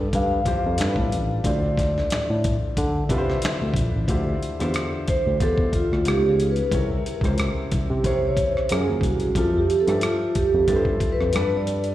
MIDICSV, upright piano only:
0, 0, Header, 1, 2, 480
1, 0, Start_track
1, 0, Key_signature, -1, "minor"
1, 0, Tempo, 659341
1, 1051, Time_signature, 4, 2, 24, 8
1, 8697, End_track
2, 0, Start_track
2, 0, Title_t, "Upright piano"
2, 0, Program_c, 0, 0
2, 0, Control_c, 0, 64, 127
2, 0, Note_on_c, 0, 53, 62
2, 0, Note_on_c, 0, 60, 57
2, 0, Note_on_c, 0, 64, 61
2, 0, Note_on_c, 0, 67, 61
2, 0, Note_on_c, 0, 69, 67
2, 331, Note_off_c, 0, 53, 0
2, 331, Note_on_c, 0, 53, 78
2, 336, Note_off_c, 0, 60, 0
2, 336, Note_on_c, 0, 60, 68
2, 339, Note_on_c, 0, 52, 70
2, 343, Note_off_c, 0, 67, 0
2, 343, Note_on_c, 0, 67, 69
2, 348, Note_on_c, 0, 72, 80
2, 568, Note_on_c, 0, 55, 77
2, 571, Note_off_c, 0, 53, 0
2, 571, Note_on_c, 0, 62, 70
2, 574, Note_off_c, 0, 60, 0
2, 575, Note_off_c, 0, 52, 0
2, 577, Note_off_c, 0, 67, 0
2, 577, Note_on_c, 0, 65, 60
2, 579, Note_off_c, 0, 72, 0
2, 580, Note_off_c, 0, 69, 0
2, 580, Control_c, 0, 64, 0
2, 580, Note_on_c, 0, 69, 61
2, 581, Note_off_c, 0, 64, 0
2, 585, Note_on_c, 0, 70, 66
2, 630, Note_off_c, 0, 70, 0
2, 633, Note_on_c, 0, 71, 74
2, 691, Control_c, 0, 64, 127
2, 1009, Note_off_c, 0, 55, 0
2, 1011, Note_off_c, 0, 62, 0
2, 1014, Note_off_c, 0, 65, 0
2, 1015, Note_off_c, 0, 69, 0
2, 1042, Note_off_c, 0, 71, 0
2, 1049, Note_on_c, 0, 50, 58
2, 1054, Note_on_c, 0, 62, 61
2, 1057, Note_on_c, 0, 64, 62
2, 1059, Control_c, 0, 64, 0
2, 1062, Note_on_c, 0, 65, 60
2, 1067, Note_on_c, 0, 72, 72
2, 1174, Control_c, 0, 64, 127
2, 1930, Note_off_c, 0, 50, 0
2, 1932, Note_off_c, 0, 62, 0
2, 1934, Note_off_c, 0, 64, 0
2, 1936, Note_off_c, 0, 65, 0
2, 1939, Note_off_c, 0, 72, 0
2, 2250, Note_on_c, 0, 50, 83
2, 2256, Note_on_c, 0, 62, 80
2, 2258, Note_on_c, 0, 64, 84
2, 2265, Note_on_c, 0, 65, 85
2, 2268, Note_on_c, 0, 71, 73
2, 2311, Note_off_c, 0, 71, 0
2, 2315, Note_on_c, 0, 72, 98
2, 2910, Note_off_c, 0, 50, 0
2, 2913, Note_off_c, 0, 62, 0
2, 2914, Note_off_c, 0, 64, 0
2, 2918, Note_off_c, 0, 65, 0
2, 2943, Note_off_c, 0, 72, 0
2, 2970, Note_on_c, 0, 50, 71
2, 2973, Note_on_c, 0, 62, 59
2, 2976, Note_on_c, 0, 64, 66
2, 2981, Control_c, 0, 64, 0
2, 2981, Note_on_c, 0, 65, 68
2, 2984, Note_on_c, 0, 67, 59
2, 2987, Note_on_c, 0, 72, 73
2, 3125, Control_c, 0, 64, 127
2, 3306, Note_off_c, 0, 50, 0
2, 3307, Note_off_c, 0, 62, 0
2, 3309, Note_off_c, 0, 64, 0
2, 3311, Note_off_c, 0, 65, 0
2, 3313, Note_off_c, 0, 67, 0
2, 3314, Note_off_c, 0, 72, 0
2, 3343, Note_on_c, 0, 50, 74
2, 3344, Note_on_c, 0, 62, 69
2, 3348, Note_on_c, 0, 64, 71
2, 3352, Note_on_c, 0, 65, 74
2, 3354, Note_on_c, 0, 67, 70
2, 3358, Note_on_c, 0, 72, 89
2, 3881, Note_off_c, 0, 50, 0
2, 3882, Note_off_c, 0, 62, 0
2, 3884, Note_off_c, 0, 64, 0
2, 3885, Note_off_c, 0, 65, 0
2, 3887, Note_off_c, 0, 67, 0
2, 3888, Note_off_c, 0, 72, 0
2, 3929, Note_on_c, 0, 50, 68
2, 3932, Note_on_c, 0, 62, 66
2, 3936, Note_on_c, 0, 76, 56
2, 3939, Note_on_c, 0, 65, 66
2, 3942, Note_on_c, 0, 67, 58
2, 3946, Note_on_c, 0, 72, 78
2, 4408, Note_on_c, 0, 49, 69
2, 4410, Note_off_c, 0, 50, 0
2, 4412, Note_off_c, 0, 62, 0
2, 4412, Note_off_c, 0, 65, 0
2, 4413, Note_off_c, 0, 76, 0
2, 4414, Note_on_c, 0, 59, 64
2, 4417, Note_off_c, 0, 67, 0
2, 4418, Note_on_c, 0, 63, 63
2, 4419, Note_off_c, 0, 72, 0
2, 4421, Control_c, 0, 64, 0
2, 4423, Note_on_c, 0, 65, 61
2, 4426, Note_on_c, 0, 73, 71
2, 4552, Control_c, 0, 64, 127
2, 4850, Note_off_c, 0, 49, 0
2, 4852, Note_off_c, 0, 59, 0
2, 4855, Note_off_c, 0, 63, 0
2, 4857, Note_off_c, 0, 65, 0
2, 4858, Note_off_c, 0, 73, 0
2, 4890, Note_on_c, 0, 48, 58
2, 4894, Note_on_c, 0, 60, 55
2, 4899, Note_on_c, 0, 64, 55
2, 4901, Control_c, 0, 64, 0
2, 4904, Note_on_c, 0, 70, 60
2, 4908, Note_on_c, 0, 73, 70
2, 5032, Control_c, 0, 64, 127
2, 5226, Note_off_c, 0, 48, 0
2, 5228, Note_off_c, 0, 60, 0
2, 5230, Note_off_c, 0, 64, 0
2, 5233, Note_off_c, 0, 70, 0
2, 5235, Note_off_c, 0, 73, 0
2, 5264, Note_on_c, 0, 48, 62
2, 5268, Note_on_c, 0, 60, 61
2, 5272, Note_on_c, 0, 61, 50
2, 5277, Note_on_c, 0, 70, 59
2, 5279, Note_on_c, 0, 72, 73
2, 5310, Note_off_c, 0, 61, 0
2, 5320, Note_on_c, 0, 64, 56
2, 5802, Note_off_c, 0, 48, 0
2, 5804, Note_off_c, 0, 60, 0
2, 5808, Note_off_c, 0, 70, 0
2, 5809, Note_off_c, 0, 72, 0
2, 5829, Note_off_c, 0, 64, 0
2, 5853, Note_on_c, 0, 48, 63
2, 5856, Note_on_c, 0, 60, 64
2, 5861, Note_on_c, 0, 64, 64
2, 5864, Note_on_c, 0, 70, 58
2, 5869, Note_on_c, 0, 73, 77
2, 6332, Note_off_c, 0, 48, 0
2, 6332, Note_on_c, 0, 54, 68
2, 6334, Note_off_c, 0, 60, 0
2, 6336, Note_off_c, 0, 64, 0
2, 6336, Note_on_c, 0, 61, 58
2, 6338, Note_off_c, 0, 70, 0
2, 6340, Note_off_c, 0, 73, 0
2, 6340, Note_on_c, 0, 65, 66
2, 6341, Control_c, 0, 64, 0
2, 6344, Note_on_c, 0, 68, 64
2, 6349, Note_on_c, 0, 70, 74
2, 6460, Control_c, 0, 64, 127
2, 6771, Note_off_c, 0, 54, 0
2, 6773, Note_off_c, 0, 61, 0
2, 6775, Note_off_c, 0, 65, 0
2, 6777, Note_off_c, 0, 68, 0
2, 6780, Note_off_c, 0, 70, 0
2, 6808, Note_on_c, 0, 53, 62
2, 6813, Note_on_c, 0, 60, 55
2, 6819, Note_on_c, 0, 64, 51
2, 6821, Control_c, 0, 64, 0
2, 6824, Note_on_c, 0, 67, 57
2, 6826, Note_on_c, 0, 69, 71
2, 6962, Control_c, 0, 64, 127
2, 7145, Note_off_c, 0, 53, 0
2, 7147, Note_off_c, 0, 60, 0
2, 7150, Note_off_c, 0, 64, 0
2, 7152, Note_off_c, 0, 67, 0
2, 7153, Note_off_c, 0, 69, 0
2, 7183, Note_on_c, 0, 53, 69
2, 7185, Note_on_c, 0, 60, 62
2, 7191, Note_on_c, 0, 76, 62
2, 7196, Note_on_c, 0, 67, 64
2, 7200, Note_on_c, 0, 69, 78
2, 7721, Note_off_c, 0, 53, 0
2, 7722, Note_off_c, 0, 60, 0
2, 7725, Note_off_c, 0, 76, 0
2, 7727, Note_off_c, 0, 67, 0
2, 7730, Note_off_c, 0, 69, 0
2, 7770, Note_on_c, 0, 53, 69
2, 7774, Note_on_c, 0, 60, 68
2, 7779, Note_on_c, 0, 64, 65
2, 7782, Note_on_c, 0, 67, 61
2, 7786, Note_on_c, 0, 71, 56
2, 7831, Note_off_c, 0, 71, 0
2, 7833, Note_on_c, 0, 72, 74
2, 8248, Note_on_c, 0, 55, 70
2, 8251, Note_off_c, 0, 53, 0
2, 8253, Note_off_c, 0, 60, 0
2, 8253, Note_on_c, 0, 62, 66
2, 8255, Note_off_c, 0, 64, 0
2, 8257, Note_off_c, 0, 67, 0
2, 8257, Note_on_c, 0, 65, 61
2, 8261, Control_c, 0, 64, 0
2, 8262, Note_on_c, 0, 69, 69
2, 8265, Note_on_c, 0, 71, 85
2, 8282, Note_off_c, 0, 72, 0
2, 8387, Control_c, 0, 64, 127
2, 8689, Note_off_c, 0, 55, 0
2, 8692, Note_off_c, 0, 62, 0
2, 8694, Note_off_c, 0, 65, 0
2, 8696, Note_off_c, 0, 69, 0
2, 8697, Note_off_c, 0, 71, 0
2, 8697, End_track
0, 0, End_of_file